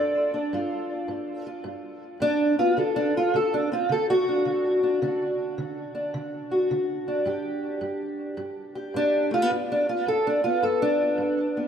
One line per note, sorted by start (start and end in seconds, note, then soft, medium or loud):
0.00 0.48 F#2 medium
0.00 0.33 D4 soft
0.00 1.47 D5 medium
0.34 2.22 D4 soft
0.53 1.05 G2 medium
0.53 1.45 F4 medium
1.08 1.61 G2 medium
1.47 2.21 F4 soft
1.64 2.17 G2 medium
2.20 2.73 G2 medium
2.20 2.59 D4 loud
2.59 2.75 B3 soft
2.59 2.78 F4 medium
2.77 3.30 D3 medium
2.77 3.35 A4 medium
2.96 3.15 D4 medium
3.17 3.35 F4 medium
3.34 3.86 D3 medium
3.34 3.53 A4 medium
3.54 3.72 D4 medium
3.72 5.00 C4 soft
3.72 3.91 F4 medium
3.89 4.42 D3 medium
3.89 4.10 A4 medium
4.10 5.22 F#4 loud
4.29 4.83 D4 soft
4.45 4.98 D3 medium
4.83 5.02 D4 soft
5.02 5.54 D3 medium
5.02 5.94 D4 medium
5.58 6.10 D3 medium
5.95 7.07 D4 soft
6.14 6.66 D3 medium
6.51 7.26 F#4 soft
6.71 7.23 D3 medium
7.08 8.96 D4 soft
7.25 7.78 G2 medium
7.25 8.74 G4 soft
7.81 8.34 G2 medium
8.37 8.90 G2 medium
8.75 9.48 G4 soft
8.94 9.46 G2 medium
8.94 9.32 D4 loud
9.31 9.42 A3 soft
9.31 9.51 F4 medium
9.42 9.51 B3 soft
9.50 10.02 G2 medium
9.72 9.89 D4 medium
9.89 10.07 F4 medium
10.06 10.58 G2 medium
10.06 10.26 A4 medium
10.27 10.43 D4 medium
10.44 11.55 B3 soft
10.44 10.62 F4 medium
10.62 11.14 G2 medium
10.62 10.81 A4 medium
10.82 11.68 D4 medium
11.18 11.68 G2 medium
11.57 11.68 B3 soft